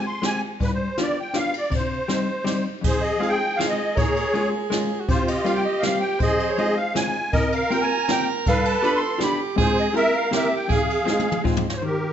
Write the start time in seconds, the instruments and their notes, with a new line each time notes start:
0.07 accordion C6
0.22 hollow-body jazz guitar G#3 C4 F4 G4, accordion G#5, snare, ride
0.60 hollow-body jazz guitar G2, accordion B4, kick, ride
0.74 accordion C5
0.98 hollow-body jazz guitar B3 D4 F4 G4, snare, ride
1.02 accordion D5
1.21 accordion G5
1.34 hollow-body jazz guitar B3 D4 F4 G4, accordion F5, snare, ride
1.54 ride
1.58 accordion D5
1.70 hollow-body jazz guitar C3, kick, ride
1.76 accordion C5
2.08 hollow-body jazz guitar G3 C4 D#4 G4, snare, ride
2.44 hollow-body jazz guitar G3 C4 D#4 G4, snare, ride
2.81 hollow-body jazz guitar F2, soprano saxophone G#4, kick, crash
2.86 accordion G#4 C5
3.01 accordion D#5, ride
3.20 hollow-body jazz guitar G#3 C4 D#4 F4, accordion F5, ride
3.29 accordion G5
3.56 hollow-body jazz guitar G#3 C4 F4, accordion F5, snare, ride
3.61 hollow-body jazz guitar D#4
3.69 accordion D#5
3.95 hollow-body jazz guitar A#2, accordion G#4 C#5, soprano saxophone A#4, kick, ride
4.16 ride
4.33 hollow-body jazz guitar G#3 A#3 C#4 F4, soprano saxophone G#4, ride
4.70 hollow-body jazz guitar G#3 A#3 C#4 F4, snare, ride
5.00 soprano saxophone F#4
5.08 hollow-body jazz guitar C3, accordion F4 C5, soprano saxophone G4, kick, ride
5.28 accordion D#5, ride
5.45 hollow-body jazz guitar G3 A#3 C4 F4, accordion F5, ride
5.55 accordion G5
5.65 accordion D#5
5.79 hollow-body jazz guitar A#3, accordion F5, snare, ride
5.83 hollow-body jazz guitar G3 C4 F4
6.01 accordion G5
6.20 hollow-body jazz guitar F2, accordion G#4 D#5, soprano saxophone C5, kick, ride
6.40 ride
6.49 accordion C#5
6.58 hollow-body jazz guitar G#3 C4 D#4 F4, accordion D#5, ride
6.77 accordion F5
6.95 hollow-body jazz guitar G#3 C4 D#4 F4, accordion G#5, snare, ride
7.33 hollow-body jazz guitar C3, accordion A#4 D#5, soprano saxophone A#4, kick, ride
7.52 accordion F5, ride
7.70 hollow-body jazz guitar A#3 C4 F4 G4, accordion G5, ride
7.81 accordion G#5
8.08 hollow-body jazz guitar A#3 C4 F4 G4, accordion G5, snare, ride
8.46 hollow-body jazz guitar G2, soprano saxophone A4, accordion B4 F5, kick, ride
8.65 accordion A5, ride
8.83 hollow-body jazz guitar B3 D4 F4 G4, accordion B5, ride
8.96 accordion C6
9.18 hollow-body jazz guitar B3 D4 F4 G4, soprano saxophone G4, snare, ride
9.23 accordion B5
9.56 hollow-body jazz guitar G#3 C4 F4 G#4, soprano saxophone G#4, accordion G#4, kick, ride
9.61 accordion C5
9.77 accordion D#5, ride
9.93 hollow-body jazz guitar A#3 C4 E4 G4, soprano saxophone A#4, accordion A#4 E5, ride
10.16 accordion F5
10.31 hollow-body jazz guitar A#3 C4 E4 G4, soprano saxophone G4, snare, ride
10.37 accordion E5
10.55 accordion G5
10.68 hollow-body jazz guitar F2, soprano saxophone G#4, accordion G#4 F5, kick, ride
10.90 ride
11.05 hollow-body jazz guitar G#3 C4 D#4 F4, soprano saxophone G#4, snare
11.20 high tom
11.32 mid tom
11.44 hollow-body jazz guitar G#3 C4 D#4 F4, kick
11.57 floor tom
11.70 accordion C5 C#5, snare
11.76 accordion C5
11.82 hollow-body jazz guitar D#3, accordion G4 A#4